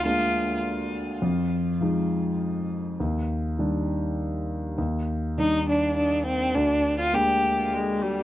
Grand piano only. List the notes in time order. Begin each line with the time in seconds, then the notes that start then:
Already playing: D2
0.05 G#3 A#3 D4
1.22 F2
1.81 F3 G#3 D#4
3.00 D#2
3.59 D#3 G3 D4
4.78 D#2
5.38 D#3 G3 D4
6.55 D2
7.13 G#3 A#3 D4